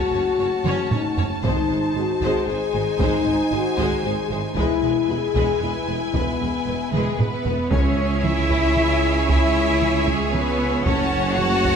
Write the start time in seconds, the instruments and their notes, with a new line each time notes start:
Already playing: string section A3 C#4 F#4 C#5, viola section C#4, french horn section F#4, violin section C#5 A5
0.11 double bass section F#1, tuba F#1, cello section F#2, viola section C#4, violin section C#5
0.38 double bass section F#1, tuba F#1, cello section F#2, viola section C#4, violin section C#5
0.64 double bass section F#1, tuba F#1, cello section F#2, viola section C#4, violin section C#5, taiko mid
0.90 double bass section F#1, tuba F#1, cello section F#2, viola section C#4, french horn section D#4, violin section C#5, taiko low-mid
1.17 double bass section F#1, tuba F#1, cello section F#2, viola section C#4, violin section C#5, taiko low
1.43 double bass section G#1, tuba G#1, cello section G#2, timpani G#2, viola section G#3, string section G#3 D#4 C5, french horn section D#4, violin section C5, taiko
1.70 double bass section G#1, tuba G#1, cello section G#2, viola section G#3, violin section C5
1.95 double bass section G#1, tuba G#1, cello section G#2, viola section G#3, french horn section F#4, violin section C5
2.21 double bass section G#1, tuba G#1, cello section G#2, viola section G#3, violin section C5, taiko
2.47 double bass section G#1, tuba G#1, cello section G#2, viola section G#3, french horn section G#4, violin section C5 G#5
2.73 double bass section G#1, tuba G#1, cello section G#2, viola section G#3, violin section C5
2.99 double bass section G#1, tuba G#1, cello section G#2, viola section G#3, french horn section D#4, violin section C5, taiko
3.25 double bass section G#1, tuba G#1, cello section G#2, viola section G#3, violin section C5
3.51 double bass section G#1, tuba G#1, cello section G#2, viola section G#3, french horn section F#4, violin section C5
3.78 double bass section G#1, tuba G#1, cello section G#2, viola section G#3, violin section C5, taiko
4.03 double bass section G#1, tuba G#1, cello section G#2, viola section G#3, french horn section G#4, violin section C5
4.30 double bass section G#1, tuba G#1, cello section G#2, viola section G#3, french horn section E4, violin section C5
4.44 french horn section D#4
4.55 double bass section E1, tuba E1, cello section E2, viola section G#3, string section E4 B4, french horn section E4, violin section B4 G#5, taiko
4.82 double bass section E1, tuba E1, cello section E2, viola section G#3, violin section B4
5.09 double bass section E1, tuba E1, cello section E2, viola section G#3, french horn section G#4, violin section B4
5.35 double bass section E1, tuba E1, cello section E2, viola section G#3, violin section B4, taiko
5.61 double bass section E1, tuba E1, cello section E2, viola section G#3, french horn section E4, violin section B4
5.88 double bass section E1, tuba E1, cello section E2, viola section G#3, violin section B4
6.14 double bass section E1, tuba E1, cello section E2, viola section G#3, french horn section B3, violin section B4, taiko
6.40 double bass section E1, tuba E1, cello section E2, viola section G#3, violin section B4
6.66 double bass section E1, tuba E1, cello section E2, viola section G#3, violin section B4
6.92 double bass section E1, tuba E1, cello section E2 G#3, french horn section G#3, viola section G#3, violin section G#4 B4, flute section G#4, taiko mid
7.18 double bass section E1, tuba E1, cello section E2 B3, viola section G#3, french horn section B3, violin section B4, flute section B4, taiko low-mid
7.44 double bass section E1, tuba E1, cello section E2, viola section G#3, violin section B4, taiko low
7.71 double bass section C#2, tuba C#2, timpani C#3, string section G#3 C#4 G#4 C#5, cello section C#4, french horn section C#4, viola section C#5 E5, flute section C#5, violin section C#5 G#5, taiko
8.24 cello section E4, french horn section E4, violin section E5, flute section E5, taiko mid
8.50 taiko
8.76 taiko mid
9.28 cello section E4, french horn section E4, flute section E5, violin section E5, taiko
9.82 taiko mid
10.06 french horn section G#3, cello section G#3, flute section G#4, violin section G#4, taiko
10.32 french horn section B3, cello section B3, flute section B4, violin section B4, taiko mid
10.85 double bass section F#1, tuba F#1, string section A3 F#4, french horn section C#4, cello section C#4, violin section C#5 F#5 A5, viola section C#5, flute section C#5, taiko
11.38 cello section F#4, french horn section F#4, violin section F#5, flute section F#5, taiko mid
11.65 taiko